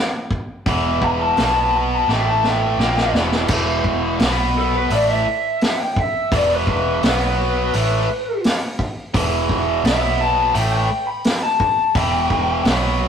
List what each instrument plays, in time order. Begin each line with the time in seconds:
0.31 kick
0.66 fingered electric bass E1, overdriven electric guitar E2 B2 E3, kick, open hi-hat
1.02 lead electric guitar B5, kick
1.22 lead electric guitar A5
1.37 fingered electric bass B1, overdriven electric guitar B2 F#3 B3, snare, open hi-hat
1.41 lead electric guitar A5
1.60 lead electric guitar A5
1.77 lead electric guitar B5
1.94 lead electric guitar A5
2.08 fingered electric bass A1, overdriven electric guitar A2 E3 A3, lead electric guitar G5, snare
2.29 lead electric guitar A5
2.44 lead electric guitar G5, snare
2.78 fingered electric bass A#1, overdriven electric guitar A#2 F3 A#3, snare
2.97 snare
3.13 fingered electric bass E1, overdriven electric guitar E2 B2 E3, snare
3.32 snare
3.48 fingered electric bass E1, overdriven electric guitar E2 B2 E3, kick, crash
3.84 kick
4.19 fingered electric bass B1, overdriven electric guitar B2 F#3 B3, snare, open hi-hat
4.58 lead electric guitar A4
4.76 lead electric guitar B4
4.90 fingered electric bass A1, overdriven electric guitar A2 E3 A3, lead electric guitar D5, open hi-hat
5.10 lead electric guitar E5
5.61 snare, open hi-hat
5.80 lead electric guitar G5
5.96 lead electric guitar E5, kick
6.32 fingered electric bass E1, overdriven electric guitar E2 B2 E3, lead electric guitar D5, kick, open hi-hat
6.53 lead electric guitar B4
6.67 kick
7.03 fingered electric bass B1, overdriven electric guitar B2 F#3 B3, lead electric guitar B4, snare, open hi-hat
7.73 fingered electric bass A1, overdriven electric guitar A2 E3 A3, open hi-hat
8.44 snare, open hi-hat
8.79 kick
9.14 fingered electric bass E1, overdriven electric guitar E2 B2 E3, kick, open hi-hat
9.49 kick
9.84 fingered electric bass B1, overdriven electric guitar B2 F#3 B3, lead electric guitar E5, snare, open hi-hat
10.21 lead electric guitar A5
10.54 fingered electric bass A1, overdriven electric guitar A2 E3 A3, lead electric guitar G5, open hi-hat
10.73 lead electric guitar G5
11.07 lead electric guitar B5
11.24 snare, open hi-hat
11.43 lead electric guitar A5
11.60 kick
11.95 fingered electric bass E1, overdriven electric guitar E2 B2 E3, lead electric guitar G5, kick, open hi-hat
12.30 kick
12.65 fingered electric bass B1, overdriven electric guitar B2 F#3 B3, snare, open hi-hat